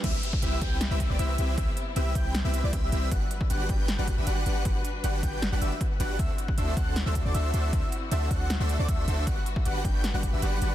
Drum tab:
CC |x---------------|----------------|----------------|----------------|
HH |x-x-x-x-x-x-x-x-|x-x-x-x-x-x-x-x-|x-x-x-x-x-x-x-x-|x-x-x-x-x-x-x-x-|
SD |--------o-------|--------o-------|--------o-------|--------o-------|
BD |o--o--o---o-----|o-----o-----o---|o--o--o---o-----|o-----o-----o---|

CC |----------------|----------------|----------------|
HH |x-x-x-x-x-x-x-x-|x-x-x-x-x-x-x-x-|x-x-x-x-x-x-x-x-|
SD |--------o-------|--------o-------|--------o-------|
BD |o--o--o---o-----|o-----o-----o---|o--o--o---o-----|